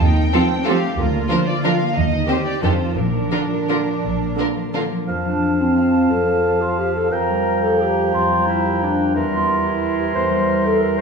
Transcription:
0.00 0.26 D#2 medium
0.00 1.00 D#3 soft
0.00 0.99 F3 soft
0.00 0.49 A3 soft
0.00 0.16 D#4 soft
0.00 0.33 D#4 soft
0.00 0.32 F4 soft
0.00 0.99 C5 soft
0.00 0.67 G5 medium
0.18 0.66 D#4 soft
0.33 0.42 F3 soft
0.33 0.66 C4 medium
0.33 0.42 C4 soft
0.33 0.41 F4 soft
0.33 1.30 F4 soft
0.33 0.41 A4 soft
0.50 0.82 A3 soft
0.66 0.76 F3 soft
0.66 0.76 C4 soft
0.66 1.00 D#4 soft
0.66 0.74 F4 soft
0.66 0.98 G4 medium
0.66 0.74 A4 soft
0.66 0.83 F5 medium
0.84 1.00 A3 soft
0.98 1.23 D2 medium
0.98 1.97 D3 soft
0.98 1.95 F4 soft
0.98 1.27 A#4 medium
1.14 1.46 A#3 soft
1.30 1.39 F3 soft
1.30 1.38 D4 soft
1.30 1.38 F4 soft
1.30 1.97 F4 soft
1.30 1.38 A#4 soft
1.30 1.47 C5 medium
1.47 1.80 A#3 soft
1.47 1.64 D5 medium
1.64 1.72 F3 soft
1.64 1.72 D4 soft
1.64 1.97 D4 soft
1.64 1.72 F4 soft
1.64 1.72 A#4 soft
1.64 1.95 F5 medium
1.81 1.97 A#3 soft
1.95 2.21 D#2 soft
1.95 2.64 D#3 soft
1.95 2.27 D#4 soft
1.95 2.44 D#5 medium
2.12 2.43 D#4 soft
2.28 2.36 D#3 soft
2.28 2.36 C4 soft
2.28 2.61 G4 soft
2.28 2.37 G4 soft
2.28 2.98 C5 soft
2.28 2.37 C5 soft
2.45 2.79 D#4 soft
2.45 2.62 D5 soft
2.62 2.89 F2 soft
2.62 2.70 D#3 soft
2.62 3.13 F3 soft
2.62 2.70 D4 soft
2.62 2.96 F4 soft
2.62 2.72 G4 soft
2.62 2.72 A4 soft
2.62 2.96 C5 soft
2.79 2.98 D#4 soft
2.79 2.98 A4 soft
2.95 3.23 A#1 soft
2.95 4.02 A#2 soft
2.95 4.92 D4 soft
2.95 4.91 A#4 soft
3.14 3.50 F3 soft
3.32 3.40 D3 soft
3.32 3.40 D4 soft
3.32 4.37 D4 soft
3.32 3.40 F4 soft
3.32 3.40 A#4 soft
3.51 3.85 F3 soft
3.69 3.77 D3 soft
3.69 4.19 A#3 soft
3.69 3.77 D4 soft
3.69 3.78 F4 soft
3.69 3.77 A#4 soft
3.86 4.55 F3 soft
4.03 4.30 A#1 soft
4.03 5.09 A#2 soft
4.20 4.72 A#3 soft
4.37 4.45 D3 soft
4.37 4.46 D4 soft
4.37 5.09 D4 soft
4.37 4.47 F4 soft
4.37 4.47 A#4 soft
4.56 4.90 F3 soft
4.73 4.81 D3 soft
4.73 5.09 A#3 soft
4.73 4.82 D4 soft
4.73 4.82 F4 soft
4.73 4.82 A#4 soft
4.92 5.24 F3 soft
5.07 6.09 F2 soft
5.07 7.08 F3 soft
5.07 7.14 F5 soft
5.07 7.09 A5 soft
5.25 6.26 F3 soft
5.25 5.62 D4 soft
5.42 6.42 A4 soft
5.60 6.11 C4 soft
5.60 5.93 F4 soft
5.78 6.78 F5 soft
5.94 6.60 F4 soft
6.10 7.12 F2 soft
6.10 6.62 A4 medium
6.27 9.17 F3 soft
6.44 7.14 A4 soft
6.61 6.80 F4 soft
6.61 6.96 F4 soft
6.78 6.95 G4 soft
6.78 9.17 F5 soft
6.95 9.17 F4 soft
6.95 7.10 A4 soft
7.11 8.13 F2 soft
7.11 9.11 F3 soft
7.11 7.64 A#4 medium
7.11 9.15 G5 soft
7.11 9.12 A#5 soft
7.29 8.30 G3 soft
7.46 8.47 A#4 soft
7.62 7.97 G4 soft
7.62 7.82 A4 soft
7.81 8.13 G4 soft
7.81 8.82 D5 soft
7.98 8.64 G4 soft
8.14 9.17 F2 soft
8.14 8.46 F4 medium
8.31 9.30 G3 soft
8.47 8.84 E4 soft
8.47 9.47 A#4 soft
8.65 8.99 G4 soft
8.82 9.16 D4 soft
8.82 9.17 D5 soft
9.00 9.65 G4 soft
9.15 10.14 E2 soft
9.15 11.01 E3 soft
9.15 11.01 A#4 soft
9.15 11.01 C6 soft
9.30 10.29 G3 soft
9.30 9.67 F4 soft
9.48 10.47 A#4 soft
9.66 10.14 E4 soft
9.66 9.98 G4 soft
9.83 10.81 C5 soft
9.99 10.64 G4 soft
10.15 11.01 E2 soft
10.15 10.64 C5 medium
10.30 11.01 G3 soft
10.48 11.01 A#4 soft
10.65 10.97 G4 soft
10.65 10.83 A4 medium
10.81 10.97 A#4 medium
10.81 11.01 C5 soft
10.98 11.01 C5 soft

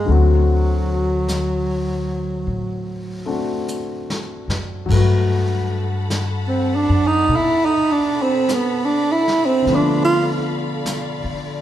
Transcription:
0.00 0.11 G#3 medium
0.00 0.10 A#3 soft
0.00 0.13 G4 soft
0.05 2.44 D2 medium
0.05 4.88 D3 soft
0.05 4.84 F#3 soft
0.05 3.24 A3 soft
0.05 brush sweep soft
0.09 3.67 F#3 medium
0.09 3.24 C4 soft
0.09 3.27 F#4 soft
1.28 brush sweep soft
1.28 snare soft
1.28 hi-hat pedal soft
2.47 4.45 A2 medium
2.47 brush sweep soft
3.26 4.88 A3 soft
3.26 4.89 C4 soft
3.26 4.89 D4 soft
3.26 4.90 F#4 soft
3.68 hi-hat pedal soft
4.10 snare soft
4.48 4.86 F#2 soft
4.48 snare soft
4.86 6.85 G2 medium
4.86 9.64 F#3 soft
4.86 9.62 F#5 medium
4.86 9.62 A5 medium
4.86 11.62 B5 medium
4.86 kick medium
4.90 9.66 A3 soft
4.90 11.62 A4 medium
4.90 9.68 B4 soft
4.90 brush sweep soft
4.90 crash medium
4.97 9.70 F#4 soft
6.10 brush sweep soft
6.10 snare soft
6.10 hi-hat pedal soft
6.48 6.77 C4 medium
6.75 7.08 D4 medium
6.89 7.27 F#2 medium
7.07 7.37 D#4 medium
7.29 9.62 B2 medium
7.29 brush sweep soft
7.36 7.67 E4 medium
7.65 7.93 D#4 medium
7.92 8.24 D4 medium
8.22 8.55 C4 medium
8.49 brush sweep soft
8.49 snare soft
8.49 hi-hat pedal medium
8.53 8.86 B3 medium
8.85 9.13 D4 medium
9.12 9.47 E4 medium
9.28 snare soft
9.46 9.77 C4 medium
9.62 11.62 D3 soft
9.62 11.62 F3 soft
9.62 11.62 D5 medium
9.62 11.62 F5 medium
9.66 11.20 B2 medium
9.66 11.62 A3 soft
9.66 11.62 B3 soft
9.66 brush sweep soft
9.66 snare soft
9.72 10.04 D4 medium
9.72 11.62 F4 soft
10.05 10.29 F4 medium
10.86 brush sweep soft
10.86 snare soft
10.86 hi-hat pedal medium
11.24 11.61 D3 medium

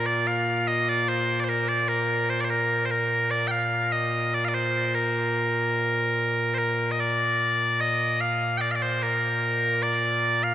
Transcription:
0.00 10.54 A#2 medium
0.06 0.27 D5 medium
0.27 0.68 F5 medium
0.68 0.89 D#5 medium
0.89 1.09 D5 loud
1.09 1.40 C5 medium
1.40 1.44 D5 medium
1.44 1.49 C5 medium
1.49 1.69 A#4 medium
1.69 1.88 D5 medium
1.88 2.30 A#4 medium
2.30 2.41 C5 medium
2.41 2.50 C5 medium
2.41 2.45 D5 medium
2.50 2.85 A#4 medium
2.85 2.91 C5 medium
2.91 3.31 A#4 medium
3.31 3.48 D5 medium
3.48 3.92 F5 medium
3.48 3.51 G5 medium
3.92 4.34 D#5 medium
4.34 4.45 D5 medium
4.45 4.54 D5 medium
4.45 4.48 F5 medium
4.54 4.95 C5 medium
4.95 6.54 A#4 medium
6.54 6.91 A#4 medium
6.54 6.58 C5 medium
6.91 7.00 D#5 medium
7.00 7.80 D5 loud
7.80 8.21 D#5 loud
8.21 8.58 F5 loud
8.58 8.71 D5 loud
8.58 8.61 G5 loud
8.71 8.75 F5 medium
8.75 8.82 D5 medium
8.82 9.02 C5 medium
9.02 9.83 A#4 medium
9.83 10.43 D5 loud
10.43 10.54 F5 loud

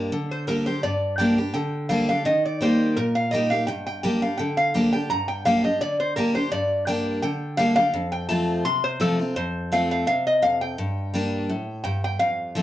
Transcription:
0.00 0.10 G3 medium
0.00 0.11 A#3 medium
0.00 0.11 D4 medium
0.00 0.11 G4 medium
0.00 0.44 G5 medium
0.12 0.80 D3 medium
0.31 0.47 C5 medium
0.47 0.66 G3 medium
0.47 0.66 A#3 medium
0.47 0.67 D4 medium
0.47 0.65 G4 loud
0.47 0.66 A#4 medium
0.66 0.83 D4 medium
0.66 0.82 G4 medium
0.66 0.82 C5 medium
0.83 1.51 G2 medium
0.83 1.20 D5 medium
1.18 1.37 G3 medium
1.18 1.38 A#3 medium
1.18 1.38 D4 medium
1.18 1.37 G4 medium
1.18 1.52 G5 medium
1.38 1.55 D4 soft
1.38 1.54 G4 medium
1.54 2.22 D3 medium
1.54 1.89 G5 medium
1.89 2.08 G3 medium
1.89 2.09 A#3 medium
1.89 2.09 D4 loud
1.89 2.08 G4 medium
1.89 2.07 F5 medium
2.09 2.26 D4 medium
2.09 2.25 G4 medium
2.09 2.24 F5 medium
2.25 2.93 D#3 medium
2.25 2.45 D#5 medium
2.45 2.62 D5 medium
2.61 2.95 G3 medium
2.61 2.95 A#3 medium
2.61 2.95 D#4 medium
2.61 2.96 G4 loud
2.61 2.98 C5 medium
2.96 3.65 A#2 medium
2.96 3.14 A#4 medium
3.15 3.31 F5 medium
3.31 3.51 G3 medium
3.31 3.51 A#3 medium
3.31 3.51 D#4 medium
3.31 3.50 G4 loud
3.31 3.49 D#5 medium
3.50 3.68 D#4 medium
3.50 3.67 G4 medium
3.50 3.66 F5 medium
3.67 4.36 G2 medium
3.67 3.85 G5 loud
3.87 4.02 G5 medium
4.03 4.22 G3 medium
4.03 4.22 A#3 loud
4.03 4.22 D4 medium
4.03 4.21 G4 loud
4.03 4.23 G5 medium
4.22 4.39 D4 soft
4.22 4.38 G4 medium
4.22 4.39 F5 medium
4.37 5.07 D3 medium
4.37 4.56 G5 loud
4.57 4.92 F5 loud
4.74 4.93 G3 medium
4.74 4.93 A#3 medium
4.74 4.93 D4 medium
4.74 4.92 G4 medium
4.93 5.10 D4 medium
4.93 5.09 G4 medium
4.93 5.08 G5 medium
5.10 5.78 G2 medium
5.10 5.30 A#5 loud
5.28 5.45 G5 medium
5.45 5.64 G3 medium
5.45 5.64 A#3 medium
5.45 5.64 D4 medium
5.45 5.62 G4 loud
5.45 5.64 F5 loud
5.64 5.81 D4 soft
5.64 5.80 G4 medium
5.64 5.81 D#5 medium
5.81 6.49 D3 medium
5.81 5.99 D5 medium
6.00 6.15 C5 loud
6.16 6.35 G3 medium
6.16 6.35 A#3 medium
6.16 6.35 D4 medium
6.16 6.34 G4 loud
6.16 6.34 A#4 medium
6.35 6.52 D4 medium
6.35 6.51 G4 medium
6.35 6.50 C5 medium
6.52 7.20 G2 medium
6.52 6.85 D5 loud
6.87 7.21 G3 medium
6.87 7.21 A#3 loud
6.87 7.22 D4 loud
6.87 7.22 G4 medium
6.87 7.20 G5 medium
7.22 7.91 D3 medium
7.22 7.56 G5 medium
7.57 7.76 G3 medium
7.57 7.77 A#3 medium
7.57 7.77 D4 medium
7.57 7.76 G4 medium
7.57 7.75 F5 loud
7.76 7.94 D4 medium
7.76 7.93 G4 medium
7.76 8.12 F5 loud
7.94 8.62 F2 medium
8.12 8.28 G5 medium
8.29 8.63 F3 medium
8.29 8.63 A3 medium
8.29 8.64 C4 medium
8.29 8.64 F4 medium
8.29 8.62 A5 medium
8.65 9.33 C3 medium
8.65 8.85 C6 loud
8.84 9.01 C5 loud
9.00 9.18 F3 medium
9.00 9.19 A3 medium
9.00 9.19 C4 medium
9.00 9.18 F4 loud
9.00 9.34 A4 medium
9.19 9.36 C4 medium
9.19 9.35 F4 medium
9.36 10.04 F2 medium
9.36 9.73 C5 medium
9.72 10.06 F3 medium
9.72 10.06 A3 loud
9.72 10.06 C4 medium
9.72 10.06 F4 medium
9.72 9.90 F5 loud
9.91 10.06 F5 medium
10.07 10.75 C3 loud
10.07 10.26 F5 loud
10.27 10.43 D#5 medium
10.42 10.76 F2 medium
10.42 10.62 F5 loud
10.61 11.82 G5 medium
10.78 11.46 G2 medium
11.14 11.48 G3 medium
11.14 11.48 A#3 medium
11.14 11.48 D4 loud
11.14 11.48 G4 medium
11.50 11.83 A2 medium
11.84 12.19 G2 medium
11.84 12.03 G5 loud
12.04 12.21 G5 loud
12.19 12.62 F2 medium
12.19 12.62 F5 loud
12.55 12.62 F3 medium
12.55 12.62 A3 medium
12.55 12.62 C4 loud
12.55 12.62 F4 loud

